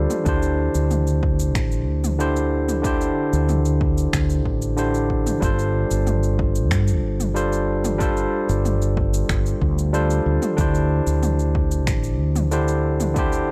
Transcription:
Already playing: tine electric piano G3 D4 F4 A4 C5
0.10 mid tom, cabasa
0.24 fretless electric bass D2, tine electric piano D3 D4 E4 G4, kick, cabasa
0.29 tine electric piano C5
0.43 cabasa
0.75 fretless electric bass D2, cabasa
0.91 mid tom, cabasa
1.07 cabasa
1.23 kick
1.40 cabasa
1.55 fretless electric bass A1, finger snap, kick, cabasa
1.72 cabasa
1.88 fretless electric bass D2
2.04 mid tom, cabasa
2.18 tine electric piano D3 D4 E4 G4 C5, cabasa
2.36 cabasa
2.69 mid tom, cabasa
2.82 tine electric piano D3 D4 E4 G4, kick, cabasa
2.87 tine electric piano C5
3.01 cabasa
3.33 fretless electric bass D2, cabasa
3.49 mid tom, cabasa
3.65 cabasa
3.81 kick
3.98 cabasa
4.13 fretless electric bass D2, finger snap, kick, cabasa
4.30 cabasa
4.46 fretless electric bass A1, kick
4.62 cabasa
4.76 tine electric piano D3 D4 E4 G4 C5, cabasa
4.94 cabasa
5.10 kick
5.26 mid tom, cabasa
5.40 fretless electric bass G1, tine electric piano G3 D4 F4 A4, kick, cabasa
5.44 tine electric piano C5
5.59 cabasa
5.91 fretless electric bass G1, cabasa
6.07 mid tom, cabasa
6.23 cabasa
6.39 kick
6.55 cabasa
6.71 fretless electric bass G2, finger snap, kick, cabasa
6.88 cabasa
7.04 fretless electric bass G1
7.20 mid tom, cabasa
7.34 tine electric piano G3 D4 F4 A4 C5, cabasa
7.53 cabasa
7.84 mid tom, cabasa
7.98 tine electric piano G3 D4 F4 A4, kick, cabasa
8.03 tine electric piano C5
8.17 cabasa
8.49 fretless electric bass G1, cabasa
8.65 mid tom, cabasa
8.82 cabasa
8.97 kick
9.14 cabasa
9.29 fretless electric bass G1, finger snap, kick, cabasa
9.46 cabasa
9.62 fretless electric bass D2, kick
9.78 cabasa
9.93 tine electric piano G3 D4 F4 A4 C5, cabasa
10.10 cabasa
10.26 fretless electric bass D2
10.42 mid tom, cabasa
10.56 fretless electric bass D2, tine electric piano D3 D4 E4 G4, kick, cabasa
10.61 tine electric piano C5
10.75 cabasa
11.07 fretless electric bass D2, cabasa
11.23 mid tom, cabasa
11.39 cabasa
11.55 kick
11.71 cabasa
11.87 fretless electric bass A1, finger snap, kick, cabasa
12.04 cabasa
12.19 fretless electric bass D2
12.36 mid tom, cabasa
12.51 tine electric piano D3 D4 E4 G4 C5, cabasa
12.68 cabasa
13.00 mid tom, cabasa
13.14 tine electric piano D3 D4 E4 G4, kick, cabasa
13.19 tine electric piano C5
13.32 cabasa

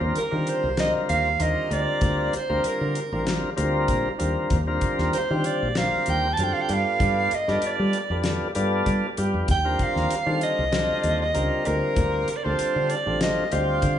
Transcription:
Already playing: tonewheel organ D3 G3 C4 F4 A#4
0.01 fingered electric bass D#2
0.15 soprano saxophone A#4, muted fingered electric bass stroke, closed hi-hat
0.31 tonewheel organ D3 G3 C4 F4 A#4, fingered electric bass D#3
0.47 soprano saxophone C5, closed hi-hat
0.64 fingered electric bass C2
0.77 tonewheel organ D3 G3 C4 F4 A#4, soprano saxophone D#5, snare, closed hi-hat
0.95 muted fingered electric bass stroke
1.09 fingered electric bass D#2, soprano saxophone F5, closed hi-hat
1.39 fingered electric bass D#2, tonewheel organ D3 G3 C4 F4 A#4, soprano saxophone D#5, closed hi-hat
1.70 fingered electric bass D2, tonewheel organ D3 G3 C4 F4 A#4, soprano saxophone D5, closed hi-hat
2.01 fingered electric bass D2, kick, closed hi-hat
2.33 soprano saxophone C5, muted fingered electric bass stroke, closed hi-hat
2.49 fingered electric bass D2, tonewheel organ D3 G3 C4 F4 A#4
2.64 soprano saxophone A#4, closed hi-hat
2.81 fingered electric bass D3
2.95 closed hi-hat
3.12 fingered electric bass A1, tonewheel organ D3 G3 C4 F4 A#4
3.27 snare, closed hi-hat
3.44 muted fingered electric bass stroke
3.56 fingered electric bass D2, tonewheel organ D3 G3 C4 F4 A#4, closed hi-hat
3.88 fingered electric bass A#1, kick, closed hi-hat
4.19 fingered electric bass D#2, tonewheel organ D3 G3 C4 F4 A#4, closed hi-hat
4.50 fingered electric bass D#2, kick, closed hi-hat
4.67 tonewheel organ D3 G3 C4 F4 A#4
4.81 muted fingered electric bass stroke, kick, closed hi-hat
4.98 fingered electric bass D#2, snare
5.13 soprano saxophone C5, muted fingered electric bass stroke, closed hi-hat
5.31 tonewheel organ D3 G3 C4 F4 G4, fingered electric bass D#3
5.44 soprano saxophone D5, closed hi-hat
5.63 fingered electric bass A#1
5.75 tonewheel organ D3 G3 C4 F4 A#4, soprano saxophone F5, snare, closed hi-hat
5.94 muted fingered electric bass stroke
6.06 fingered electric bass D#2, soprano saxophone G5, closed hi-hat
6.33 soprano saxophone A5
6.37 fingered electric bass F#2, tonewheel organ D3 G3 C4 F4 A4, closed hi-hat
6.43 soprano saxophone G5
6.53 soprano saxophone F5
6.62 soprano saxophone G5
6.69 fingered electric bass G2, tonewheel organ G3 B3 D4 F4 A4, closed hi-hat
6.73 soprano saxophone F5
7.00 fingered electric bass G2, kick, closed hi-hat
7.31 soprano saxophone D#5, muted fingered electric bass stroke, closed hi-hat
7.48 fingered electric bass G2, tonewheel organ G3 B3 D4 F4 A4, snare
7.62 muted fingered electric bass stroke, closed hi-hat
7.66 soprano saxophone D5
7.79 fingered electric bass G3
7.93 closed hi-hat
8.10 fingered electric bass F2, tonewheel organ G3 B3 D4 F4 A4
8.24 snare, closed hi-hat
8.41 muted fingered electric bass stroke
8.55 fingered electric bass G2, tonewheel organ G3 B3 D4 F4 A4, closed hi-hat
8.86 fingered electric bass G3, kick, closed hi-hat
9.17 fingered electric bass G2, tonewheel organ G3 B3 D4 F4 G4, closed hi-hat
9.34 fingered electric bass F2
9.48 fingered electric bass D#2, soprano saxophone G5, kick, closed hi-hat
9.65 tonewheel organ D3 G3 C4 F4 A#4
9.79 soprano saxophone F5, kick, closed hi-hat
9.96 fingered electric bass D#2, snare
10.11 muted fingered electric bass stroke, closed hi-hat
10.26 tonewheel organ D3 G3 C4 F4 A4, fingered electric bass D#3
10.41 soprano saxophone D#5, closed hi-hat
10.59 fingered electric bass C2
10.71 tonewheel organ D3 G3 C4 F4 A4, snare, closed hi-hat
10.91 muted fingered electric bass stroke
11.03 fingered electric bass D#2, closed hi-hat
11.22 soprano saxophone D#5
11.34 fingered electric bass C#2, tonewheel organ D3 G3 C4 F4 A#4, closed hi-hat
11.65 fingered electric bass D2, tonewheel organ D3 G3 C4 F4 A#4, soprano saxophone A#4, closed hi-hat
11.96 fingered electric bass D2, kick, closed hi-hat
12.28 muted fingered electric bass stroke, closed hi-hat
12.36 soprano saxophone D5
12.44 fingered electric bass D2, tonewheel organ D3 G3 C4 F4 A4, soprano saxophone C5
12.59 muted fingered electric bass stroke, closed hi-hat
12.76 fingered electric bass D3
12.90 soprano saxophone D5, closed hi-hat
13.06 fingered electric bass A1, tonewheel organ D3 G3 C4 F4 A4
13.21 soprano saxophone D#5, snare, closed hi-hat
13.38 muted fingered electric bass stroke
13.52 fingered electric bass D2, tonewheel organ D3 G3 C4 F4 G4, soprano saxophone F5, closed hi-hat
13.82 fingered electric bass D3, kick, closed hi-hat

